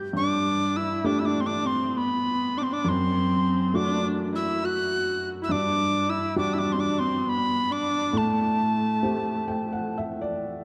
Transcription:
Already playing: G2 G3 A3 B3
0.13 G2 D4 D6
0.76 E4 E6
1.04 A3 D4 G4 D6
1.19 E4 E6
1.25 D4 D6
1.41 C4 C6
1.46 D4 D6
1.65 C4 C6
1.97 B3 B5
2.57 D4 D6
2.62 C4 C6
2.72 D4 D6
2.84 F#2
2.89 C4 C6
3.74 A3 D4 F#4 D6
4.34 E4 E6
4.64 F#4 F#6
5.42 E4 E6
5.49 G2 D4 D6
6.09 E4 E6
6.36 G3 D4 F#4 D6
6.53 E4 E6
6.59 D4 D6
6.72 C4 C6
6.79 D4 D6
6.99 C4 C6
7.27 B3 B5
7.71 D4 D6
8.13 A2 A3
8.18 A5
9.03 A3 C4 G4
9.48 G5
9.73 F#5
9.98 E5
10.21 D5

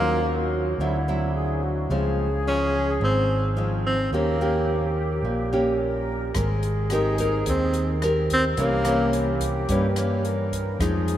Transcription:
Already playing: D#2 D#3 F#3 A#3 C#4 F4
0.22 F#4
0.78 D2 D3 F#3 C4 E4
1.08 F#3 C4 E4
1.34 G#4
1.63 F#4
1.89 C#2 C#3 F3 G#3 C4 G#4
2.47 F3 G#3 C#4
3.00 G#1 G#2 C4
3.57 F3 G#3 C4
3.86 C4
4.11 D#2 D#3 A#3 C#4 G4
4.41 A#3 C#4 G4
5.22 A#1 A#2
5.53 A#3 C#4 G4
5.78 A#4
6.34 G#1 G#3 C4 G#4 A#4, kick, cross-stick, closed hi-hat
6.63 closed hi-hat
6.90 C4 D#4 G4 A#4, cross-stick, closed hi-hat
7.18 C4 A#4, kick, closed hi-hat
7.46 D#2 D#3 C4, kick, closed hi-hat
7.74 closed hi-hat
8.02 C4 G4 A#4, cross-stick, closed hi-hat
8.30 C4, kick, closed hi-hat
8.57 C2 C3 E3 A#3 C#4 G4, kick, closed hi-hat
8.85 E3 A#3 C#4, cross-stick, closed hi-hat
9.13 G4, closed hi-hat
9.41 kick, closed hi-hat
9.68 G2 E3 A#3 C#4, kick, closed hi-hat
9.96 E3 A#3 C#4, cross-stick, closed hi-hat
10.23 A#4, closed hi-hat
10.52 kick, closed hi-hat
10.79 F2 F3 G#3 D#4 G#4, kick, cross-stick, closed hi-hat
11.08 closed hi-hat

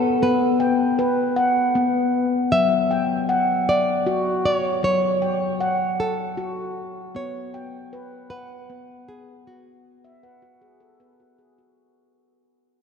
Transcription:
Already playing: B3 A4 F#5
0.22 B3 B4
0.60 G5
0.99 B4
1.36 F#5
1.75 B3
2.52 F#3 E5
2.91 G5
3.29 F#5
3.69 D5
4.06 F#4
4.45 C#5
4.83 F#3 C#5
5.22 G5
5.61 F#5
6.00 A4
6.37 F#4
7.15 B3 C#5
7.54 G5
7.93 B4
8.30 B4 F#5
8.70 B3
9.09 G#4
9.47 B3 F#4
10.04 E5
10.23 B4 F#5
10.42 F#4
10.61 G#4
10.80 A4
11.00 B3 B4
11.20 F#4
11.38 G#4
11.58 F#4

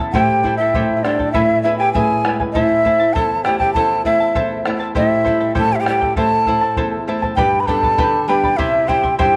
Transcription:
Already playing: E2
0.00 E4 A4 A5
0.12 A2 E4 G4 A4 C5 G5, bombo low
0.43 G3 C4 E4 A4 C5 G5, bombo low
0.57 E4 E5 G5
0.62 E4 A4
0.74 A2 E4 G4 A4 C5 G5, bombo low
0.97 E4 E5
1.03 G3 C4 D4 E4 A4 C5 D5 G5, bombo rim
1.19 E4 A4 G5, bombo low
1.32 A2 E4 A4 B4 E5 G#5, bombo low
1.63 B3 E4 G#4 B4 E5 G#5
1.78 E4 G4 B4 G5 G#5
1.93 A2 E4 G#4 B4 E5 G#5, bombo low
2.25 G#3 B3 E4 B4 E5 G#5, bombo rim
2.40 E4 B4 G#5, bombo low
2.53 A2 E4 A4 C5 E5 A5, bombo low
2.85 A3 C4 E4 C5 E5 A5, bombo low
3.00 E4 C5 A5
3.13 E2 E4 A4 C5 E5 A5, bombo low
3.44 A3 C4 E4 G4 C5 E5 G5 A5, bombo rim
3.59 E4 G4 C5 G5 A5, bombo low
3.73 E2 E4 A4 C5 E5 A5, bombo low
4.05 A3 C4 E4 C5 E5 A5, bombo low
4.20 E4 C5 A5
4.35 E2 E4 A4 C5 E5 A5, bombo low
4.65 A3 C4 E4 C5 E5 A5, bombo rim
4.80 E4 C5 A5
4.95 A2 E4 G4 A4 C5 E5 G5, bombo low
5.24 G3 C4 E4 A4 C5 G5, bombo low
5.40 E4 A4 G5
5.55 A2 E4 G4 A4 C5 G5 A5, bombo low
5.72 G4 E5 G5
5.80 G4 G5
5.85 G3 C4 E4 G4 A4 C5 G5, bombo rim
5.90 G5
6.01 E4 A4 G5, bombo low
6.16 A2 E4 A4 C5 E5 A5, bombo low
6.46 A3 C4 E4 C5 E5 A5, bombo low
6.61 E4 C5 A5
6.77 E2 E4 A4 C5 E5 A5, bombo low
7.07 A3 C4 E4 C5 E5 A5
7.22 E4 C5 A5, bombo low
7.36 G2 G4 B4 D5 G5 B5, bombo low
7.60 B4 B5
7.66 G3 B3 D4 A4 B4 D5 G5 A5 B5, bombo low
7.83 B4 D5 B5, bombo low
7.98 D3 G4 B4 D5 G5 B5, bombo low
8.28 G3 B3 D4 G4 B4 D5 G5 B5
8.43 B4 D5 B5, bombo low
8.57 C3 E4 G4 C5 E5 C6, bombo low
8.87 G3 C4 E4 G4 C5 E5 G5 C6, bombo low
9.03 E4 E5 C6, bombo low
9.18 G2 E4 G4 C5 E5 G5 C6, bombo low

